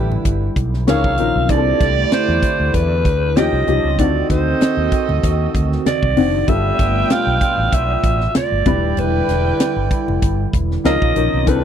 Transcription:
Already playing: fretless electric bass A1, analog synth pad D3 G3 E4, grand piano E3 B3 D4 G4, horn section G3 E4 B4, alto saxophone G4
0.12 low conga
0.25 fretless electric bass G1, kick, closed hi-hat, muted conga
0.56 fretless electric bass B1, kick, closed hi-hat
0.74 snare
0.87 fretless electric bass C#2, analog synth pad D#3 A#3 F4, grand piano F3 C#4 D#4 A#4, horn section A#3 G#4 C#5, alto saxophone F5, snare, closed hi-hat, high conga
1.04 fretless electric bass C2, kick
1.18 fretless electric bass A#1, grand piano F3 C#4 D#4 A#4, closed hi-hat, high conga
1.36 fretless electric bass B1
1.49 fretless electric bass C2, analog synth pad D3 A3 E4, grand piano E3 C4 D4 G#4, horn section A3 G4 D5, alto saxophone D5, kick, closed hi-hat, muted conga
1.57 grand piano A4
1.81 fretless electric bass C2, kick, snare, closed hi-hat, muted conga
2.12 alto saxophone C5, snare, closed hi-hat, high conga
2.29 fretless electric bass E2
2.43 kick, closed hi-hat
2.60 fretless electric bass D2
2.74 fretless electric bass E2, alto saxophone B4, kick, closed hi-hat, muted conga
3.05 fretless electric bass D2, kick, closed hi-hat
3.36 fretless electric bass D#2, analog synth pad C#3 G3 F4, grand piano F3 C#4 D#4 G4, horn section C#4 A#4 G5, alto saxophone D#5, snare, closed hi-hat, high conga
3.53 fretless electric bass C2
3.67 fretless electric bass C2, grand piano F3 C#4 D#4 G4, closed hi-hat, high conga
3.84 fretless electric bass C#2
3.98 fretless electric bass D2, analog synth pad D#3 C4 F#4, grand piano D#3 C4 D4 F#4, horn section C4 A4 D#5, alto saxophone D5, kick, closed hi-hat, muted conga
4.30 fretless electric bass D2, alto saxophone C5, kick, snare, closed hi-hat, muted conga
4.61 snare, closed hi-hat, high conga
4.77 fretless electric bass D#2
4.92 kick, closed hi-hat
5.09 fretless electric bass D2, low conga
5.23 fretless electric bass D#2, kick, closed hi-hat, muted conga
5.54 fretless electric bass D2, kick, closed hi-hat
5.72 snare
5.86 alto saxophone D5, snare, closed hi-hat, high conga
6.03 fretless electric bass C2, kick
6.16 fretless electric bass F1, grand piano D#3 C4 D4 F#4, open hi-hat, high conga
6.34 fretless electric bass F#1
6.47 fretless electric bass G1, analog synth pad B2 A3 F4, grand piano G3 B3 F4 A4, horn section D4 B4 G5, alto saxophone E5, kick, closed hi-hat, muted conga
6.79 fretless electric bass G1, kick, snare, closed hi-hat, muted conga
7.10 alto saxophone F5, snare, closed hi-hat, high conga
7.27 fretless electric bass B1
7.41 kick, closed hi-hat
7.58 fretless electric bass A1
7.72 fretless electric bass B1, alto saxophone E5, kick, closed hi-hat, muted conga
8.04 fretless electric bass A1, kick, closed hi-hat
8.21 snare
8.35 alto saxophone D5, snare, closed hi-hat, high conga
8.52 fretless electric bass G1
8.65 fretless electric bass E1, analog synth pad D3 G3 E4, grand piano G3 D4 E4 B4, horn section E4 D5 G5, kick, closed hi-hat, high conga
8.82 fretless electric bass D#1
8.97 fretless electric bass E1, alto saxophone B4, closed hi-hat, muted conga
9.28 fretless electric bass E1, snare, closed hi-hat
9.60 snare, closed hi-hat, high conga
9.76 fretless electric bass G1
9.91 kick, closed hi-hat
10.08 fretless electric bass F1, low conga
10.22 fretless electric bass G1, kick, closed hi-hat, muted conga
10.53 fretless electric bass E1, kick, closed hi-hat
10.71 snare
10.84 fretless electric bass C#2, analog synth pad D#3 A#3 F4, grand piano F3 C#4 D#4 A#4, horn section A#3 G#4 F5, alto saxophone D#5, snare, closed hi-hat, high conga
11.02 fretless electric bass A#1, kick
11.15 fretless electric bass A#1, grand piano F3 C#4 D#4 A#4, closed hi-hat, high conga
11.33 fretless electric bass B1
11.46 fretless electric bass C2, analog synth pad D3 A3 E4, grand piano E3 C4 D4 A4, horn section E4 D5 G5, alto saxophone B4, kick, closed hi-hat, muted conga

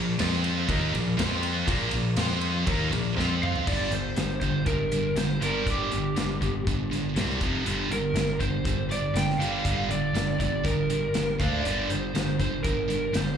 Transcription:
Already playing: picked electric bass A#1, distorted electric guitar A#2 F3, tonewheel organ F4 A#4 A#5
0.19 picked electric bass F2, distorted electric guitar F3 C4 F4, tonewheel organ C5 C6, snare, ride
0.33 snare
0.44 ride
0.68 picked electric bass D#2, distorted electric guitar D#3 A#3 D#4, tonewheel organ A#4 A#5, kick, ride
0.93 picked electric bass A#1, distorted electric guitar A#2 F3, ride
1.17 picked electric bass F2, distorted electric guitar F3 C4 F4, tonewheel organ F4 C5 C6, snare, ride
1.43 ride
1.67 picked electric bass A#1, distorted electric guitar A#2 F3 A#3, tonewheel organ A#4 A#5, kick, ride
1.91 picked electric bass A#1, distorted electric guitar A#2 F3, ride
2.16 picked electric bass F2, distorted electric guitar F3 C4 F4, tonewheel organ C5 C6, snare, ride
2.41 ride
2.65 picked electric bass D#2, distorted electric guitar D#3 A#3 D#4, tonewheel organ A#4 A#5, kick, ride
2.92 picked electric bass A#1, distorted electric guitar A#2 F3, ride
3.15 picked electric bass F2, distorted electric guitar F3 C4 F4, tonewheel organ F4 C5 C6
3.19 snare
3.43 lead electric guitar F5, mid tom
3.56 floor tom
3.67 picked electric bass G1, distorted electric guitar G2 D3 G3, lead electric guitar D5, kick, crash
3.91 picked electric bass G1, distorted electric guitar G2 D3, lead electric guitar C5, closed hi-hat
4.16 picked electric bass G1, distorted electric guitar G2 D3, snare, closed hi-hat
4.41 picked electric bass G1, distorted electric guitar G2 D3, lead electric guitar C5, kick, closed hi-hat
4.66 picked electric bass G1, distorted electric guitar G2 D3, lead electric guitar A#4, kick, closed hi-hat
4.92 distorted electric guitar G2 D3, closed hi-hat
5.16 picked electric bass G1, distorted electric guitar G2 D3, lead electric guitar C5, snare, closed hi-hat
5.41 picked electric bass G1, distorted electric guitar G2 D3 G3, lead electric guitar A#4, closed hi-hat
5.66 picked electric bass G1, distorted electric guitar G2 D3 G3, kick, closed hi-hat
5.70 lead electric guitar G4
5.92 picked electric bass G1, distorted electric guitar G2 D3, closed hi-hat
6.16 picked electric bass G1, distorted electric guitar G2 D3, snare, closed hi-hat
6.41 picked electric bass G1, distorted electric guitar G2 D3, kick, closed hi-hat
6.67 picked electric bass G1, distorted electric guitar G2 D3, kick, closed hi-hat
6.91 distorted electric guitar G2 D3, snare, closed hi-hat
7.16 picked electric bass C2, distorted electric guitar C3 G3 C4, snare, closed hi-hat
7.30 snare
7.41 picked electric bass F1, distorted electric guitar F2 C3 F3, kick, closed hi-hat
7.65 picked electric bass G1, distorted electric guitar G2 D3 G3, closed hi-hat
7.90 picked electric bass G1, distorted electric guitar G2 D3, lead electric guitar A#4, closed hi-hat
8.14 picked electric bass G1, distorted electric guitar G2 D3, snare, closed hi-hat
8.40 picked electric bass G1, distorted electric guitar G2 D3, lead electric guitar C5, kick, closed hi-hat
8.64 picked electric bass G1, distorted electric guitar G2 D3, kick, closed hi-hat
8.89 distorted electric guitar G2 D3, lead electric guitar D5, closed hi-hat
9.14 picked electric bass G1, distorted electric guitar G2 D3, lead electric guitar G5, snare, closed hi-hat
9.30 snare
9.38 picked electric bass G1, distorted electric guitar G2 D3 G3, lead electric guitar F5, closed hi-hat
9.63 picked electric bass G1, distorted electric guitar G2 D3 G3, kick, closed hi-hat
9.90 picked electric bass G1, distorted electric guitar G2 D3, lead electric guitar D5, closed hi-hat
10.13 picked electric bass G1, distorted electric guitar G2 D3, snare, closed hi-hat
10.40 picked electric bass G1, distorted electric guitar G2 D3, lead electric guitar D5, kick, closed hi-hat
10.64 picked electric bass G1, distorted electric guitar G2 D3, lead electric guitar A#4, kick, closed hi-hat
10.90 distorted electric guitar G2 D3, closed hi-hat
11.14 picked electric bass G1, distorted electric guitar G2 D3, snare, closed hi-hat
11.40 picked electric bass D2, distorted electric guitar D3 A3 D4, lead electric guitar F5, kick, closed hi-hat
11.64 picked electric bass G1, distorted electric guitar G2 D3 G3, lead electric guitar D5, closed hi-hat
11.90 picked electric bass G1, distorted electric guitar G2 D3, lead electric guitar C5, closed hi-hat
12.15 picked electric bass G1, distorted electric guitar G2 D3, snare, closed hi-hat
12.39 picked electric bass G1, distorted electric guitar G2 D3, lead electric guitar C5, kick, closed hi-hat
12.63 picked electric bass G1, distorted electric guitar G2 D3, lead electric guitar A#4, kick, closed hi-hat
12.89 distorted electric guitar G2 D3, closed hi-hat
13.13 picked electric bass G1, distorted electric guitar G2 D3, lead electric guitar C5, snare, closed hi-hat

